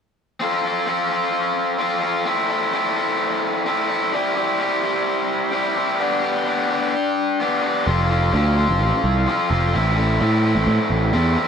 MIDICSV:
0, 0, Header, 1, 3, 480
1, 0, Start_track
1, 0, Tempo, 466200
1, 428, Time_signature, 4, 2, 24, 8
1, 11818, End_track
2, 0, Start_track
2, 0, Title_t, "Overdriven electric guitar"
2, 0, Program_c, 0, 29
2, 409, Note_on_c, 0, 60, 72
2, 421, Note_on_c, 0, 65, 73
2, 441, Note_on_c, 0, 69, 84
2, 649, Note_off_c, 0, 69, 0
2, 653, Note_on_c, 0, 69, 54
2, 670, Note_off_c, 0, 65, 0
2, 683, Note_on_c, 0, 65, 47
2, 884, Note_off_c, 0, 60, 0
2, 889, Note_on_c, 0, 60, 83
2, 895, Note_off_c, 0, 65, 0
2, 907, Note_on_c, 0, 65, 91
2, 913, Note_off_c, 0, 69, 0
2, 918, Note_on_c, 0, 69, 88
2, 1119, Note_off_c, 0, 69, 0
2, 1123, Note_on_c, 0, 69, 57
2, 1141, Note_off_c, 0, 65, 0
2, 1154, Note_on_c, 0, 65, 49
2, 1835, Note_off_c, 0, 60, 0
2, 1839, Note_on_c, 0, 60, 65
2, 1848, Note_off_c, 0, 65, 0
2, 1855, Note_off_c, 0, 69, 0
2, 1860, Note_on_c, 0, 65, 63
2, 1868, Note_on_c, 0, 69, 65
2, 2063, Note_off_c, 0, 69, 0
2, 2075, Note_on_c, 0, 69, 56
2, 2088, Note_off_c, 0, 65, 0
2, 2101, Note_on_c, 0, 65, 46
2, 2315, Note_off_c, 0, 69, 0
2, 2317, Note_off_c, 0, 60, 0
2, 2321, Note_on_c, 0, 60, 78
2, 2327, Note_off_c, 0, 65, 0
2, 2342, Note_on_c, 0, 64, 82
2, 2352, Note_on_c, 0, 69, 86
2, 2561, Note_off_c, 0, 69, 0
2, 2573, Note_on_c, 0, 69, 67
2, 2596, Note_off_c, 0, 64, 0
2, 2600, Note_on_c, 0, 64, 49
2, 2811, Note_off_c, 0, 60, 0
2, 2815, Note_on_c, 0, 60, 78
2, 2827, Note_off_c, 0, 64, 0
2, 2831, Note_off_c, 0, 69, 0
2, 2831, Note_on_c, 0, 64, 83
2, 2844, Note_on_c, 0, 69, 93
2, 3038, Note_off_c, 0, 69, 0
2, 3050, Note_on_c, 0, 69, 65
2, 3079, Note_off_c, 0, 64, 0
2, 3083, Note_on_c, 0, 64, 52
2, 3763, Note_off_c, 0, 60, 0
2, 3767, Note_on_c, 0, 60, 64
2, 3773, Note_off_c, 0, 64, 0
2, 3782, Note_off_c, 0, 69, 0
2, 3785, Note_on_c, 0, 64, 63
2, 3794, Note_on_c, 0, 69, 72
2, 3986, Note_off_c, 0, 69, 0
2, 3999, Note_on_c, 0, 69, 61
2, 4015, Note_off_c, 0, 64, 0
2, 4027, Note_on_c, 0, 64, 44
2, 4235, Note_off_c, 0, 69, 0
2, 4239, Note_off_c, 0, 60, 0
2, 4250, Note_off_c, 0, 64, 0
2, 4250, Note_on_c, 0, 55, 77
2, 4259, Note_on_c, 0, 60, 81
2, 4274, Note_on_c, 0, 64, 95
2, 4280, Note_on_c, 0, 67, 86
2, 4474, Note_off_c, 0, 67, 0
2, 4478, Note_on_c, 0, 67, 66
2, 4481, Note_off_c, 0, 64, 0
2, 4493, Note_on_c, 0, 64, 65
2, 4494, Note_off_c, 0, 60, 0
2, 4506, Note_on_c, 0, 60, 49
2, 4714, Note_off_c, 0, 55, 0
2, 4718, Note_on_c, 0, 55, 79
2, 4720, Note_off_c, 0, 60, 0
2, 4728, Note_off_c, 0, 64, 0
2, 4733, Note_on_c, 0, 60, 77
2, 4741, Note_on_c, 0, 64, 92
2, 4742, Note_off_c, 0, 67, 0
2, 4746, Note_on_c, 0, 67, 102
2, 4956, Note_off_c, 0, 67, 0
2, 4960, Note_on_c, 0, 67, 57
2, 4968, Note_off_c, 0, 64, 0
2, 4981, Note_off_c, 0, 60, 0
2, 4981, Note_on_c, 0, 64, 56
2, 4994, Note_on_c, 0, 60, 47
2, 5673, Note_off_c, 0, 55, 0
2, 5676, Note_off_c, 0, 60, 0
2, 5677, Note_on_c, 0, 55, 65
2, 5689, Note_on_c, 0, 60, 61
2, 5691, Note_off_c, 0, 64, 0
2, 5703, Note_on_c, 0, 64, 70
2, 5705, Note_off_c, 0, 67, 0
2, 5710, Note_on_c, 0, 67, 75
2, 5907, Note_off_c, 0, 67, 0
2, 5911, Note_on_c, 0, 67, 51
2, 5915, Note_off_c, 0, 64, 0
2, 5927, Note_on_c, 0, 64, 59
2, 5931, Note_off_c, 0, 60, 0
2, 5943, Note_on_c, 0, 60, 47
2, 6156, Note_off_c, 0, 60, 0
2, 6159, Note_off_c, 0, 64, 0
2, 6160, Note_on_c, 0, 59, 82
2, 6176, Note_on_c, 0, 62, 82
2, 6182, Note_off_c, 0, 67, 0
2, 6187, Note_on_c, 0, 67, 86
2, 6393, Note_off_c, 0, 67, 0
2, 6397, Note_on_c, 0, 67, 70
2, 6414, Note_off_c, 0, 62, 0
2, 6427, Note_on_c, 0, 62, 51
2, 6634, Note_off_c, 0, 59, 0
2, 6646, Note_on_c, 0, 59, 80
2, 6650, Note_off_c, 0, 62, 0
2, 6662, Note_on_c, 0, 62, 90
2, 6671, Note_off_c, 0, 67, 0
2, 6675, Note_on_c, 0, 67, 91
2, 6880, Note_off_c, 0, 67, 0
2, 6884, Note_on_c, 0, 67, 68
2, 6900, Note_off_c, 0, 62, 0
2, 6912, Note_on_c, 0, 62, 52
2, 7133, Note_off_c, 0, 59, 0
2, 7619, Note_on_c, 0, 59, 61
2, 7620, Note_off_c, 0, 62, 0
2, 7632, Note_on_c, 0, 62, 64
2, 7636, Note_off_c, 0, 67, 0
2, 7648, Note_on_c, 0, 67, 70
2, 7845, Note_off_c, 0, 67, 0
2, 7857, Note_on_c, 0, 67, 59
2, 7878, Note_off_c, 0, 62, 0
2, 7890, Note_on_c, 0, 62, 49
2, 8085, Note_off_c, 0, 67, 0
2, 8086, Note_off_c, 0, 59, 0
2, 8093, Note_off_c, 0, 55, 0
2, 8097, Note_on_c, 0, 53, 79
2, 8102, Note_off_c, 0, 62, 0
2, 8106, Note_on_c, 0, 60, 81
2, 8112, Note_on_c, 0, 65, 84
2, 8122, Note_on_c, 0, 69, 84
2, 8329, Note_off_c, 0, 69, 0
2, 8333, Note_on_c, 0, 69, 65
2, 8338, Note_off_c, 0, 65, 0
2, 8350, Note_on_c, 0, 65, 60
2, 8361, Note_off_c, 0, 60, 0
2, 8365, Note_on_c, 0, 60, 60
2, 8555, Note_off_c, 0, 53, 0
2, 8567, Note_on_c, 0, 53, 82
2, 8576, Note_off_c, 0, 60, 0
2, 8578, Note_off_c, 0, 65, 0
2, 8580, Note_on_c, 0, 60, 80
2, 8591, Note_on_c, 0, 65, 82
2, 8598, Note_off_c, 0, 69, 0
2, 8602, Note_on_c, 0, 69, 86
2, 8818, Note_off_c, 0, 69, 0
2, 8822, Note_on_c, 0, 69, 59
2, 8826, Note_off_c, 0, 65, 0
2, 8838, Note_on_c, 0, 65, 58
2, 8848, Note_off_c, 0, 60, 0
2, 8852, Note_on_c, 0, 60, 50
2, 9055, Note_off_c, 0, 53, 0
2, 9540, Note_on_c, 0, 53, 68
2, 9550, Note_off_c, 0, 60, 0
2, 9552, Note_off_c, 0, 65, 0
2, 9555, Note_on_c, 0, 60, 66
2, 9559, Note_off_c, 0, 69, 0
2, 9564, Note_on_c, 0, 65, 63
2, 9571, Note_on_c, 0, 69, 66
2, 9766, Note_off_c, 0, 69, 0
2, 9778, Note_on_c, 0, 69, 65
2, 9780, Note_off_c, 0, 65, 0
2, 9792, Note_on_c, 0, 65, 59
2, 9801, Note_off_c, 0, 60, 0
2, 9805, Note_on_c, 0, 60, 50
2, 10007, Note_off_c, 0, 69, 0
2, 10008, Note_off_c, 0, 53, 0
2, 10014, Note_off_c, 0, 65, 0
2, 10019, Note_off_c, 0, 60, 0
2, 10023, Note_on_c, 0, 60, 80
2, 10038, Note_on_c, 0, 64, 84
2, 10055, Note_on_c, 0, 69, 93
2, 10244, Note_off_c, 0, 69, 0
2, 10256, Note_on_c, 0, 69, 67
2, 10280, Note_off_c, 0, 64, 0
2, 10285, Note_on_c, 0, 64, 55
2, 10498, Note_off_c, 0, 60, 0
2, 10502, Note_on_c, 0, 60, 82
2, 10511, Note_off_c, 0, 64, 0
2, 10514, Note_off_c, 0, 69, 0
2, 10515, Note_on_c, 0, 64, 83
2, 10526, Note_on_c, 0, 69, 86
2, 10730, Note_off_c, 0, 69, 0
2, 10743, Note_on_c, 0, 69, 61
2, 10766, Note_off_c, 0, 64, 0
2, 10770, Note_on_c, 0, 64, 55
2, 11453, Note_off_c, 0, 60, 0
2, 11457, Note_on_c, 0, 60, 76
2, 11458, Note_off_c, 0, 64, 0
2, 11470, Note_on_c, 0, 64, 65
2, 11474, Note_off_c, 0, 69, 0
2, 11486, Note_on_c, 0, 69, 65
2, 11677, Note_off_c, 0, 69, 0
2, 11689, Note_on_c, 0, 69, 62
2, 11709, Note_off_c, 0, 64, 0
2, 11722, Note_on_c, 0, 64, 45
2, 11818, Note_off_c, 0, 60, 0
2, 11818, Note_off_c, 0, 64, 0
2, 11818, Note_off_c, 0, 69, 0
2, 11818, End_track
3, 0, Start_track
3, 0, Title_t, "Picked electric bass"
3, 0, Program_c, 1, 34
3, 8105, Note_on_c, 1, 29, 70
3, 8553, Note_off_c, 1, 29, 0
3, 8582, Note_on_c, 1, 38, 90
3, 8919, Note_off_c, 1, 38, 0
3, 8946, Note_on_c, 1, 29, 70
3, 9069, Note_off_c, 1, 29, 0
3, 9069, Note_on_c, 1, 33, 70
3, 9179, Note_off_c, 1, 33, 0
3, 9305, Note_on_c, 1, 36, 77
3, 9529, Note_off_c, 1, 36, 0
3, 9786, Note_on_c, 1, 29, 88
3, 10010, Note_off_c, 1, 29, 0
3, 10036, Note_on_c, 1, 33, 75
3, 10481, Note_off_c, 1, 33, 0
3, 10513, Note_on_c, 1, 45, 98
3, 10847, Note_off_c, 1, 45, 0
3, 10867, Note_on_c, 1, 33, 67
3, 10979, Note_off_c, 1, 33, 0
3, 10985, Note_on_c, 1, 45, 88
3, 11098, Note_off_c, 1, 45, 0
3, 11224, Note_on_c, 1, 33, 83
3, 11451, Note_off_c, 1, 33, 0
3, 11465, Note_on_c, 1, 40, 86
3, 11692, Note_off_c, 1, 40, 0
3, 11818, End_track
0, 0, End_of_file